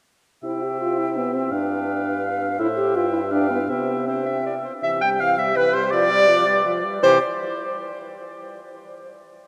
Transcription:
0.43 bassoon C3, french horn E4, clarinet C5, oboe E5, flute G5
0.62 french horn G4
0.81 french horn F4
0.98 french horn E4
1.17 french horn B3
1.34 french horn C4
1.51 bassoon G2, french horn D4, clarinet B4, oboe F5, flute G5
2.24 flute F5
2.59 bassoon A2, french horn E4, clarinet C5, oboe E5, flute E5
2.77 french horn G4
2.95 bassoon G2, french horn F4, clarinet C5, oboe E5, flute G5
3.13 french horn E4
3.31 french horn D4, clarinet B4, oboe F5, flute G5
3.50 french horn B3
3.69 bassoon C3, french horn B3, clarinet C5, oboe E5, flute G5
4.07 french horn C4, clarinet C5, oboe E5, flute G5
4.26 clarinet E5
4.46 clarinet D5
4.65 clarinet C5
4.83 bassoon C3, french horn E3, oboe E5, clarinet E5, flute E5
5.01 french horn G3, clarinet G5, flute G5, oboe G5
5.20 french horn E3, oboe F5, flute F5, clarinet F5
5.38 french horn G3, flute E5, oboe E5, clarinet E5
5.56 french horn E3, flute B4, oboe B4, clarinet B4
5.74 french horn G3, oboe C5, flute C5, clarinet C5
5.90 french horn F3, oboe D5, flute D5, clarinet D5
6.10 french horn G3
6.28 french horn F3
6.46 french horn G3
6.65 french horn F3
6.84 french horn G3
7.02 bassoon C3, french horn E3, oboe G4, clarinet C5, flute C5

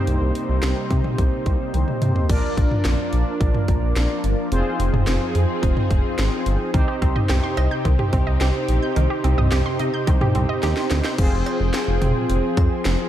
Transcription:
Already playing: string machine C3 G3 A#3 D#4, analog polysynth C4 D#4 G4 C5
0.07 analog synth bass C2, closed hi-hat
0.21 analog synth bass C2
0.35 closed hi-hat
0.49 analog synth bass C2
0.63 analog synth bass C2, snare, closed hi-hat
0.91 analog synth bass C3, kick, closed hi-hat
1.04 mid tom
1.18 analog synth bass C2, kick, closed hi-hat
1.46 analog synth bass C2, kick, closed hi-hat
1.74 analog synth bass C2, closed hi-hat, high tom
1.88 mid tom
2.02 analog synth bass C3, closed hi-hat, mid tom
2.16 floor tom
2.30 analog synth bass A#1, string machine F3 A#3 D4, analog polysynth D4 F4 A#4 D5, kick, closed hi-hat, crash
2.58 analog synth bass A#1, kick, closed hi-hat
2.71 mid tom
2.85 analog synth bass A#1, snare, closed hi-hat
3.13 analog synth bass A#1, closed hi-hat
3.41 analog synth bass A#1, kick, closed hi-hat
3.55 mid tom
3.68 analog synth bass A#1, kick, closed hi-hat
3.82 analog synth bass A#1
3.96 analog synth bass A#1, snare, closed hi-hat
4.24 analog synth bass G1, closed hi-hat
4.52 analog synth bass F1, string machine C4 D#4 G#4, analog polysynth C4 F4 G#4 C5, closed hi-hat
4.80 analog synth bass F1, closed hi-hat
4.93 analog synth bass F1, mid tom
5.07 analog synth bass F1, snare, closed hi-hat
5.35 analog synth bass F2, closed hi-hat
5.63 analog synth bass F1, kick, closed hi-hat
5.77 mid tom
5.91 analog synth bass F1, kick, closed hi-hat
6.18 analog synth bass G#1, snare, closed hi-hat
6.46 analog synth bass G1, closed hi-hat
6.74 analog synth bass C2, string machine C3 C4 D#4 G4, synth arpeggio sound D#3, analog polysynth C4 D#4 G4 C5, kick, closed hi-hat
6.88 synth arpeggio sound G4
7.02 analog synth bass C2, synth arpeggio sound C4, kick, closed hi-hat
7.16 synth arpeggio sound D#5, mid tom
7.29 analog synth bass C2, synth arpeggio sound G4, snare, closed hi-hat
7.43 synth arpeggio sound C6
7.57 analog synth bass C2, synth arpeggio sound D#5, closed hi-hat, cowbell
7.71 synth arpeggio sound G6
7.85 analog synth bass C2, synth arpeggio sound D#3, kick, closed hi-hat
7.99 synth arpeggio sound G4, mid tom
8.13 analog synth bass C2, synth arpeggio sound C4, kick, closed hi-hat
8.27 analog synth bass C2, synth arpeggio sound D#5
8.41 analog synth bass C2, synth arpeggio sound G4, snare, closed hi-hat
8.68 analog synth bass A#1, closed hi-hat
8.82 synth arpeggio sound G6
8.96 analog synth bass C2, synth arpeggio sound D#3, closed hi-hat
9.10 synth arpeggio sound G4
9.24 analog synth bass C2, synth arpeggio sound C4, closed hi-hat
9.38 analog synth bass C2, synth arpeggio sound D#5, mid tom
9.52 analog synth bass C2, synth arpeggio sound G4, snare, closed hi-hat
9.66 synth arpeggio sound C6
9.79 analog synth bass C3, synth arpeggio sound D#5, closed hi-hat
9.94 synth arpeggio sound G6
10.07 analog synth bass C2, synth arpeggio sound D#3, kick, closed hi-hat
10.21 synth arpeggio sound G4, mid tom
10.35 analog synth bass C2, synth arpeggio sound C4, closed hi-hat
10.49 synth arpeggio sound D#5
10.63 analog synth bass D#2, synth arpeggio sound G4, snare, closed hi-hat
10.77 snare
10.91 analog synth bass D2, snare, closed hi-hat
11.05 synth arpeggio sound G6, snare
11.18 analog synth bass F1, string machine F3 C4 G#4 G5, analog polysynth C4 F4 G#4 C5, kick, closed hi-hat, crash
11.32 analog synth bass F1
11.46 closed hi-hat, cowbell
11.60 analog synth bass F1
11.74 snare, closed hi-hat
11.88 analog synth bass F1
12.02 analog synth bass F1, closed hi-hat, mid tom
12.30 analog synth bass F1, closed hi-hat
12.57 analog synth bass F2, kick, closed hi-hat, cowbell
12.85 analog synth bass F1, snare, closed hi-hat

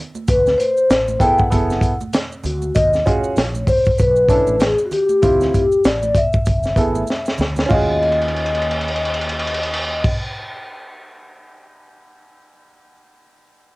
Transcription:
0.15 high conga, maracas
0.27 fretless electric bass D2, vibraphone B4, kick, closed hi-hat, maracas
0.46 snare, maracas
0.58 vibraphone C5, closed hi-hat, high conga, maracas
0.77 maracas
0.90 fretless electric bass A1, snare, closed hi-hat, maracas
1.08 high conga, maracas
1.19 upright piano B3 E4 G#4 A4, vibraphone G5, kick, closed hi-hat, low conga, maracas
1.38 vibraphone F#5, kick, maracas
1.50 fretless electric bass F#1, upright piano B3 E4 G#4 A4, kick, closed hi-hat, maracas
1.70 snare, maracas
1.81 kick, closed hi-hat, maracas
2.01 high conga, maracas
2.13 snare, closed hi-hat, low conga, maracas
2.32 maracas
2.44 fretless electric bass D2, vibraphone F#4, closed hi-hat, low conga, maracas
2.62 high conga, maracas
2.75 fretless electric bass D#2, vibraphone D#5, kick, closed hi-hat, maracas
2.93 snare, maracas
3.06 upright piano C#4 F4 F#4 G#4, vibraphone C#5, kick, closed hi-hat, high conga, maracas
3.24 maracas
3.36 fretless electric bass A#1, snare, closed hi-hat, maracas
3.55 high conga, maracas
3.67 vibraphone C5, kick, open hi-hat, low conga, maracas
3.85 kick, maracas
3.98 fretless electric bass B1, vibraphone B4, kick, closed hi-hat, maracas
4.16 maracas
4.29 upright piano C#4 D4 E4 A4, kick, closed hi-hat, maracas
4.47 fretless electric bass A1, high conga, maracas
4.60 vibraphone G#4, snare, closed hi-hat, low conga, maracas
4.78 maracas
4.86 vibraphone F#4
4.91 vibraphone G4, closed hi-hat, low conga, maracas
5.09 high conga, maracas
5.22 fretless electric bass D2, upright piano C4 E4 F4 G4, kick, closed hi-hat, maracas
5.41 snare, maracas
5.54 kick, closed hi-hat, high conga, maracas
5.72 maracas
5.84 fretless electric bass A1, vibraphone D5, snare, closed hi-hat, maracas
6.02 high conga, maracas
6.15 vibraphone E5, kick, closed hi-hat, low conga, maracas
6.33 kick, maracas
6.46 fretless electric bass F#1, kick, closed hi-hat, maracas
6.63 snare, maracas
6.76 fretless electric bass G#1, upright piano B3 E4 G#4 A4, kick, closed hi-hat, maracas
6.95 high conga, maracas
7.07 snare, maracas
7.26 snare, maracas
7.38 fretless electric bass D2, snare, low conga, maracas
7.56 snare, high conga, maracas
7.66 upright piano C#4 F4, high conga
7.70 fretless electric bass D#2, upright piano F#4, vibraphone D#5, kick, crash
7.74 upright piano G#4
8.02 crash
8.12 ride
8.21 crash
8.28 ride
8.36 crash
8.46 ride
8.55 crash
8.62 ride
8.71 crash
8.81 ride
8.88 crash
8.96 ride
9.05 crash
9.14 ride
9.21 crash
9.29 ride
9.39 crash
9.47 ride
9.54 crash
9.63 ride
9.74 crash
10.04 kick, crash

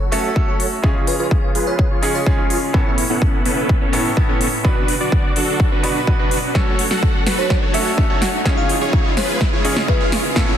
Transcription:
Already playing: grand piano A3 C#4 F#4 A4, riser
0.00 supersaw synth F#4 A4 C#5
0.12 grand piano A3 C#4 F#4 A4, fm electric piano E5, open hi-hat
0.24 fm electric piano E5
0.35 grand piano A3 C#4 F#4 A4, kick
0.48 supersaw synth F#4 A4 C#5
0.60 open hi-hat
0.82 grand piano C#3 G#3 C#4 F4 G#4, supersaw synth F4 G#4 C#5, kick
1.07 fm electric piano B4, open hi-hat
1.19 supersaw synth F4 G#4 C#5, fm electric piano B4
1.31 kick
1.55 supersaw synth F4 G#4 B4, open hi-hat
1.67 fm electric piano C#5
1.79 kick
1.91 supersaw synth F4 G#4 C#5
2.02 grand piano C#3 G#3 C#4 F4 G#4, open hi-hat
2.15 fm electric piano C#5
2.26 grand piano C#3 G#3 C#4 F4 G#4, kick
2.38 supersaw synth F4 G#4 C#5
2.50 open hi-hat
2.73 grand piano A2 B3 C#4 E4 A4, supersaw synth B3 C#4 E4 A4 C#5, kick
2.98 open hi-hat
3.10 supersaw synth B3 C#4 E4 A4 F#5
3.22 kick
3.46 supersaw synth B3 C#4 E4 A4 B4, open hi-hat
3.69 kick
3.81 supersaw synth B3 C#4 E4 A4 C#5
3.93 grand piano A2 B3 C#4 E4 A4, open hi-hat
4.17 grand piano B3 C#4 E4 A4, kick
4.29 supersaw synth B3 C#4 E4 A4 C#5
4.41 open hi-hat
4.63 grand piano B2 B3 D4 F#4 B4, supersaw synth D4 F#4 B4, kick
4.88 open hi-hat
5.00 supersaw synth D4 F#4 D5
5.12 kick
5.36 supersaw synth D4 F#4 A4, open hi-hat
5.60 kick
5.72 supersaw synth D4 F#4 B4
5.83 grand piano B2 B3 D4 F#4 B4, open hi-hat
6.07 grand piano B2 B3 D4 F#4 B4, kick
6.19 supersaw synth D4 F#4 B4
6.31 open hi-hat
6.54 grand piano A3 C#4 F#4 A4, supersaw synth F#4 A4 C#5, kick, snare
6.79 open hi-hat
6.91 supersaw synth F#4 A4 F#5, snare
7.03 kick
7.26 supersaw synth F#4 A4 B4, snare, open hi-hat
7.38 fm electric piano C#5
7.50 kick, snare
7.62 supersaw synth F#4 A4 C#5
7.73 grand piano A3 C#4 F#4 A4, fm electric piano E5, open hi-hat
7.86 fm electric piano E5
7.97 grand piano A3 C#4 F#4 A4, kick
8.10 supersaw synth F#4 A4 C#5
8.22 fm electric piano F#5, snare, open hi-hat
8.44 grand piano C#3 G#3 C#4 F4 G#4, supersaw synth F4 G#4 C#5, kick, snare
8.57 fm electric piano F5
8.69 open hi-hat
8.81 supersaw synth F4 G#4 C#5
8.93 kick
9.17 supersaw synth F4 G#4 B4, fm electric piano C#5, snare, open hi-hat
9.41 kick, snare
9.53 supersaw synth F4 G#4 C#5
9.64 grand piano C#3 G#3 C#4 F4 G#4, open hi-hat
9.77 snare
9.88 grand piano C#3 G#3 C#4 F4 G#4, fm electric piano B4, kick
10.00 supersaw synth F4 G#4 C#5
10.12 snare, open hi-hat
10.35 grand piano A2 B3 C#4 E4 A4, supersaw synth B3 C#4 E4 A4 C#5, kick, snare

